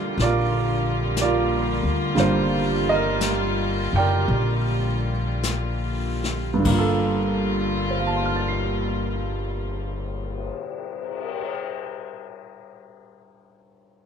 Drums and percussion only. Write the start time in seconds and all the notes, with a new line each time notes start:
0.19 brush sweep, snare
1.17 brush sweep, snare, hi-hat pedal
2.17 brush sweep, snare
3.21 brush sweep, snare, hi-hat pedal
4.29 brush sweep
5.43 brush sweep, snare, hi-hat pedal
6.24 snare
6.65 kick, crash
7.51 cymbal swell